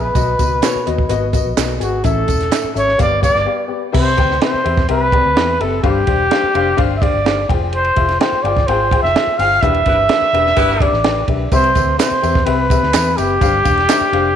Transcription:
Already playing: fingered electric bass A#1
0.00 trumpet B4
0.15 fingered electric bass B1, upright piano B2 B3 F#4 D#5, kick, closed hi-hat, tambourine
0.38 fingered electric bass C#2, upright piano B3 F#4 D#5, kick, closed hi-hat, tambourine
0.62 upright piano B3 F#4 C#5, snare, clap, closed hi-hat, tambourine
0.75 muted fingered electric bass stroke
0.86 fingered electric bass D#2, upright piano B3 F#4 D#5, closed hi-hat
0.98 kick
1.09 fingered electric bass G#1, upright piano B3 F#4 D#5, closed hi-hat, tambourine
1.32 upright piano B3 F#4 D#5, kick, closed hi-hat, tambourine
1.46 fingered electric bass A#1
1.57 fingered electric bass B1, upright piano B3 F#4 D#5, snare, clap, closed hi-hat, tambourine
1.79 fingered electric bass G#1, upright piano B3 F#4 G#4, trumpet F#4, closed hi-hat, tambourine
2.04 fingered electric bass A1, upright piano A2 C#4 A4 E5, trumpet A4, kick, closed hi-hat, tambourine
2.26 fingered electric bass E1, upright piano C#4 A4, kick, closed hi-hat, tambourine
2.40 snare, closed hi-hat
2.51 upright piano C#4 A4 E5, snare, clap, closed hi-hat, tambourine
2.64 muted fingered electric bass stroke
2.74 fingered electric bass G#1, upright piano C#4 A4 E5, trumpet C#5, closed hi-hat, tambourine
2.89 snare
2.98 fingered electric bass G1, upright piano G2 B3 G4 F5, trumpet D5, kick, closed hi-hat, tambourine
3.21 upright piano B3 G4 F5, trumpet D5, kick, closed hi-hat, tambourine
3.35 fingered electric bass G1, snare
3.45 upright piano B3 G4 F5
3.68 upright piano B3 G4 D5
3.92 fingered electric bass C2, upright piano C3 C4 G4 B4 E5, trumpet C5, kick, crash
4.17 fingered electric bass D2, upright piano C4 G4 B4 G5, kick, ride
4.31 snare
4.41 upright piano C4 G4 B4 E5, trumpet C5, snare, ride
4.54 muted fingered electric bass stroke
4.64 fingered electric bass E2, upright piano C4 G4 B4 E5, ride
4.77 kick, snare
4.89 fingered electric bass C2, upright piano C4 G4 B4 E5, trumpet B4, ride
5.12 upright piano C4 G4 B4 D5, kick, ride
5.25 fingered electric bass D2
5.36 fingered electric bass E2, upright piano C4 G4 B4 E5, snare, ride
5.60 fingered electric bass F#1, upright piano C4 G4 B4 E5, trumpet A4, ride
5.83 fingered electric bass G1, upright piano G2 D4 G4 C5 F5, trumpet G4, kick, ride
6.07 fingered electric bass E1, upright piano D4 G4 C5 D5, kick, ride
6.31 upright piano D4 G4 C5 F5, snare, ride
6.43 muted fingered electric bass stroke
6.54 fingered electric bass F1, upright piano D4 G4 C5 F5, ride
6.77 fingered electric bass G1, upright piano D4 G4 C5 F5, kick, ride
6.97 trumpet E5
7.01 upright piano D4 G4 C5 F5, trumpet D5, kick, ride
7.14 fingered electric bass G1
7.25 upright piano D4 G4 C5 F5, snare, ride
7.49 fingered electric bass F1, upright piano F4 G#4 C5 G5, kick, ride
7.73 trumpet C5, ride
7.85 ride
7.96 fingered electric bass F1, upright piano F4 G#4 C5 E5, kick, ride
8.09 snare, ride
8.20 upright piano F4 G#4 C5 G5, trumpet C5, snare, ride
8.32 muted fingered electric bass stroke
8.43 fingered electric bass G1, upright piano F4 G#4 C5 G5, trumpet D5, ride
8.57 kick, snare
8.67 fingered electric bass G#1, upright piano F4 G#4 C5 G5, trumpet C5, ride
8.91 upright piano F4 G#4 C5 G5, kick, ride
9.02 fingered electric bass F1, trumpet E5, snare
9.16 upright piano F4 G#4 C5 E5, snare, ride
9.27 muted fingered electric bass stroke
9.38 fingered electric bass G1, upright piano F4 G#4 C5 G5, trumpet F5, open hi-hat, ride
9.62 fingered electric bass E1, upright piano E3 D4 G4 B4 E5, trumpet E5, kick, hi-hat pedal, ride
9.74 ride
9.86 fingered electric bass G1, horn section B3 E4 G4 B4, upright piano D4 G4 B4 E5, kick, ride
10.09 upright piano D4 G4 B4 E5, snare, ride
10.22 muted fingered electric bass stroke
10.33 fingered electric bass E1, upright piano D4 G4 B4 E5, ride
10.46 snare
10.56 fingered electric bass G1, horn section B3 E4 G4 B4, upright piano D4 G4 B4 E5, kick, ride
10.80 upright piano D4 G4 B4 E5, trumpet D5, kick, ride
10.92 fingered electric bass A1, snare
11.04 upright piano D4 G4 B4 G5, snare, ride
11.28 fingered electric bass B1, upright piano D4 G4 B4 E5, kick, ride
11.52 fingered electric bass C2, upright piano C3 C4 G4 B4 E5, trumpet C5, kick, ride, tambourine
11.64 ride
11.74 fingered electric bass D2, upright piano C4 G4 B4 E5, kick, ride, tambourine
11.98 upright piano C4 G4 B4 E5, trumpet C5, snare, clap, ride, tambourine
12.11 muted fingered electric bass stroke
12.22 fingered electric bass E2, upright piano C4 G4 B4 E5, ride, tambourine
12.35 kick, snare
12.45 fingered electric bass C2, upright piano C4 G4 B4 E5, trumpet B4, ride
12.70 upright piano C4 G4 B4 E5, kick, ride, tambourine
12.83 fingered electric bass D2, snare
12.93 fingered electric bass E2, upright piano C4 G4 B4 E5, snare, clap, ride, tambourine
13.17 fingered electric bass F#1, upright piano C4 G4 B4 E5, trumpet G4, ride, tambourine
13.40 fingered electric bass G1, upright piano G2 D4 G4 C5 F5, kick, ride, tambourine
13.64 fingered electric bass E1, upright piano D4 G4 C5 F5, kick, ride, tambourine
13.78 snare, ride
13.89 upright piano D4 G4 C5 E5, snare, clap, ride, tambourine
14.01 muted fingered electric bass stroke
14.12 fingered electric bass F1, upright piano D4 G4 C5 F5, ride

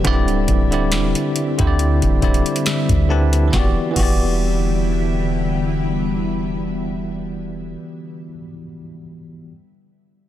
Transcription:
Already playing: ambient pad G3 E4
0.04 808-style bass D1, tine electric piano D3 C4 E4 F#4 D5, ambient pad D3 C4, kick, closed hi-hat
0.13 tine electric piano G4
0.28 closed hi-hat
0.48 808-style bass D1, kick, closed hi-hat
0.71 tine electric piano D3 C4 E4 G4 D5, closed hi-hat
0.92 808-style bass E1, snare, closed hi-hat
1.15 closed hi-hat
1.36 closed hi-hat
1.58 808-style bass D2, tine electric piano D3 C4 E4 G4 C5, kick, closed hi-hat
1.67 tine electric piano D5
1.79 closed hi-hat
2.02 808-style bass D1, kick, closed hi-hat
2.21 tine electric piano D3 C4 E4 G4 D5, kick, closed hi-hat
2.34 closed hi-hat
2.46 closed hi-hat
2.56 closed hi-hat
2.66 tine electric piano E5, snare, closed hi-hat
2.89 808-style bass D2, kick, closed hi-hat
3.09 tine electric piano D3 C4 E4 G4 B4 A5
3.33 closed hi-hat
3.48 tine electric piano E3 B3
3.52 808-style bass E1, ambient pad D3 G3 B3 E4, tine electric piano F#4 G4, kick, snare
3.59 tine electric piano D5
3.91 tine electric piano E3 B3
3.96 808-style bass E1, tine electric piano F#4 G4, kick, crash
4.02 tine electric piano D5

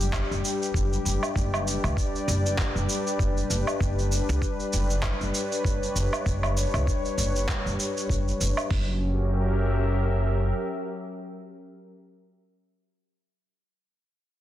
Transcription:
Already playing: upright bass F#1, analog synth pad G3 D4 G4
0.01 shaker
0.13 kick, clap, low woodblock, shaker
0.31 upright bass F#1, shaker
0.42 analog synth pad B4, shaker
0.62 shaker
0.74 upright bass F#1, kick, shaker
0.93 shaker
1.03 upright bass F#1, analog synth pad D5, shaker
1.23 low woodblock, shaker
1.36 upright bass F#1, kick, shaker
1.54 low woodblock, shaker
1.67 shaker
1.84 upright bass C#2, low woodblock, shaker
1.97 kick, shaker
2.15 shaker
2.28 upright bass F#1, shaker
2.46 shaker
2.58 kick, clap, shaker
2.76 upright bass F#1, shaker
2.89 shaker
3.07 shaker
3.19 upright bass F#1, kick, shaker
3.37 shaker
3.50 upright bass F#1, shaker
3.67 low woodblock, shaker
3.80 upright bass F#1, kick, shaker
3.99 shaker
4.12 shaker
4.29 upright bass C#2, shaker
4.42 kick, shaker
4.60 shaker
4.73 upright bass F#1, shaker
4.90 shaker
5.03 kick, clap, low woodblock, shaker
5.19 upright bass F#1, analog synth pad C#5, shaker
5.34 shaker
5.52 shaker
5.65 upright bass F#1, kick, shaker
5.83 shaker
5.96 upright bass F#1, shaker
6.13 low woodblock, shaker
6.26 upright bass F#1, kick, shaker
6.43 low woodblock, shaker
6.57 shaker
6.74 upright bass C#2, low woodblock, shaker
6.87 kick, shaker
7.05 shaker
7.18 upright bass F#1, shaker
7.36 shaker
7.48 kick, clap, shaker
7.66 upright bass F#1, shaker
7.80 shaker
7.97 shaker
8.09 upright bass F#1, kick, shaker
8.28 shaker
8.40 upright bass F#1, shaker
8.57 low woodblock, shaker
8.70 upright bass F#1, analog synth pad F#3, kick, open hi-hat
8.82 analog synth pad C#4
8.91 analog synth pad G4
9.00 analog synth pad A#4
9.09 analog synth pad E5

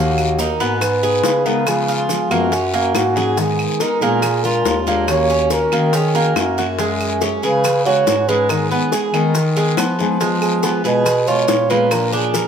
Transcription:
Already playing: bass clarinet D#2, steel-string acoustic guitar D#3 A#3 D#4 F#4, cuban tres A#3, muted trumpet F#4
0.18 claves, maracas
0.39 steel-string acoustic guitar D#3 A#3 D#4 F#4, cuban tres D#4, muted trumpet A#4, high bongo, short guiro, maracas
0.60 bass clarinet G#2, steel-string acoustic guitar A#3 D#4 F#4, cuban tres B3, short guiro, maracas
0.81 muted trumpet B4, muted steel-string acoustic guitar stroke, high bongo, long guiro, claves, maracas
1.02 steel-string acoustic guitar B3 D#4 G#4, cuban tres G#4, maracas
1.24 bass clarinet C#3, high bongo, low bongo, short guiro, maracas
1.45 steel-string acoustic guitar G#3 B3 D#4 G#4, cuban tres B3, muted trumpet A#4, short guiro, maracas
1.66 steel-string acoustic guitar C#3 F3 G#3 B3 F4, muted trumpet G#4, high bongo, long guiro, claves, maracas
1.88 cuban tres F4, high bongo, maracas
2.09 steel-string acoustic guitar F3 G#3 B3 F4, high bongo, short guiro, maracas
2.30 bass clarinet F#2, steel-string acoustic guitar F3 G#3 B3 F4, cuban tres A#3, muted trumpet F#4, high bongo, short guiro, claves, maracas
2.52 cuban tres C#4, muted steel-string acoustic guitar stroke, high bongo, long guiro, maracas
2.74 cuban tres A#3, steel-string acoustic guitar A#3 C#4 F#4, maracas
2.95 bass clarinet G#2, muted trumpet F#4, high bongo, low bongo, short guiro, claves, maracas
3.16 steel-string acoustic guitar F#3 A#3 C#4 F#4, cuban tres G#4, high bongo, short guiro, maracas
3.37 steel-string acoustic guitar D#3 G#3 B3 D#4 A#4, muted trumpet G#4, high bongo, long guiro, maracas
3.59 claves, maracas
3.80 steel-string acoustic guitar G#3 B3 D#4 A#4, cuban tres D#4, muted trumpet A#4, high bongo, short guiro, maracas
4.01 bass clarinet A#2, steel-string acoustic guitar G#3 B3 D#4 A#4, cuban tres A#3, muted trumpet G#4, short guiro, maracas
4.22 muted steel-string acoustic guitar stroke, high bongo, long guiro, claves, maracas
4.44 steel-string acoustic guitar G#3 D4 F4, cuban tres F4, muted trumpet A#4, maracas
4.65 bass clarinet D#2, high bongo, low bongo, short guiro, maracas
4.86 steel-string acoustic guitar G#3 D4 F4, cuban tres A#3, short guiro, maracas
5.08 steel-string acoustic guitar D#3 A#3 C#4 F#4, muted trumpet C#5, high bongo, long guiro, claves, maracas
5.29 cuban tres C#4, high bongo, maracas
5.50 steel-string acoustic guitar D#3 A#3 C#4 F#4, muted trumpet A#4, high bongo, short guiro, maracas
5.72 bass clarinet D#3, cuban tres A#3, steel-string acoustic guitar A#3 C#4 F#4, high bongo, short guiro, claves, maracas
5.93 cuban tres C#4, muted trumpet G#4, muted steel-string acoustic guitar stroke, high bongo, long guiro, maracas
6.14 cuban tres A#3, steel-string acoustic guitar A#3 C#4 F#4, maracas
6.36 bass clarinet F#2, muted trumpet F#4, high bongo, low bongo, short guiro, claves, maracas
6.58 steel-string acoustic guitar A#3 C#4 F#4, cuban tres F#4, high bongo, short guiro, maracas
6.79 steel-string acoustic guitar F#3 G#3 C#4 G#4, cuban tres G#3, high bongo, long guiro, maracas
7.00 muted trumpet G#4, claves, maracas
7.21 steel-string acoustic guitar F#3 G#3 C#4 G#4, cuban tres C#4, high bongo, short guiro, maracas
7.43 bass clarinet C#3, steel-string acoustic guitar G#3 C#4 G#4, cuban tres G#4, muted trumpet B4, short guiro, maracas
7.64 muted steel-string acoustic guitar stroke, high bongo, long guiro, claves, maracas
7.86 steel-string acoustic guitar G#3 C#4 G#4, cuban tres F#4, muted trumpet C#5, maracas
8.07 bass clarinet G#2, high bongo, low bongo, short guiro, maracas
8.28 cuban tres G#3, steel-string acoustic guitar G#3 C#4 G#4, muted trumpet B4, short guiro, maracas
8.49 steel-string acoustic guitar D#3 G#3 B3 D#4 G#4, muted trumpet A#4, high bongo, long guiro, claves, maracas
8.71 cuban tres B3, muted trumpet G#4, high bongo, maracas
8.92 steel-string acoustic guitar G#3 B3 D#4 G#4, cuban tres G#4, high bongo, short guiro, maracas
9.13 bass clarinet D#3, steel-string acoustic guitar G#3 B3 D#4 G#4, cuban tres D#4, high bongo, short guiro, claves, maracas
9.35 muted steel-string acoustic guitar stroke, high bongo, long guiro, maracas
9.56 cuban tres G#3, steel-string acoustic guitar B3 D#4 G#4, maracas
9.77 bass clarinet F3, cuban tres B3, high bongo, low bongo, short guiro, claves, maracas
9.99 steel-string acoustic guitar G#3 B3 D#4 G#4, high bongo, short guiro, maracas
10.20 steel-string acoustic guitar F3 G#3 B3 F4, cuban tres G#3, high bongo, long guiro, maracas
10.41 muted trumpet G#4, claves, maracas
10.63 steel-string acoustic guitar F3 G#3 B3 F4, cuban tres B3, high bongo, short guiro, maracas
10.84 bass clarinet B2, steel-string acoustic guitar G#3 B3 F4, cuban tres G#4, muted trumpet B4, short guiro, maracas
11.05 muted steel-string acoustic guitar stroke, high bongo, long guiro, claves, maracas
11.27 steel-string acoustic guitar G#3 B3 F4, cuban tres F4, muted trumpet C#5, maracas
11.48 bass clarinet A#2, high bongo, low bongo, short guiro, maracas
11.70 steel-string acoustic guitar G#3 B3 F4, cuban tres A#3, muted trumpet B4, short guiro, maracas
11.91 steel-string acoustic guitar F3 A#3 D4 F4, muted trumpet A#4, high bongo, long guiro, claves, maracas
12.13 cuban tres D4, muted trumpet G#4, high bongo, maracas
12.34 steel-string acoustic guitar F3 A#3 D4 F4, cuban tres A#4, high bongo, short guiro, maracas

